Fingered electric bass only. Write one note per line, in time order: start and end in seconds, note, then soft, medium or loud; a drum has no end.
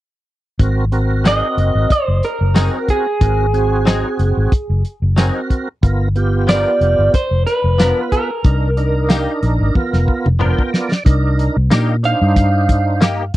0.60 1.41 G#1 medium
1.57 1.72 F#1 medium
1.75 1.87 G#1 medium
2.08 2.20 F#1 medium
2.41 2.68 F#1 medium
3.21 4.02 G#1 medium
4.19 4.34 F#1 medium
4.37 4.49 G#1 medium
4.52 muted fingered electric bass stroke soft
4.70 4.82 F#1 medium
5.02 5.29 F#1 medium
5.83 6.64 G1 medium
6.81 6.96 F1 medium
6.99 7.11 G1 medium
7.31 7.44 F1 medium
7.64 7.91 F1 medium
8.45 9.26 C2 medium
9.43 9.57 A#1 medium
9.61 9.73 G#1 medium
9.93 10.05 F1 medium
10.26 10.53 F1 medium
11.06 11.48 C2 medium
11.57 11.69 C2 medium
11.71 12.13 A#2 medium
12.22 13.30 G2 medium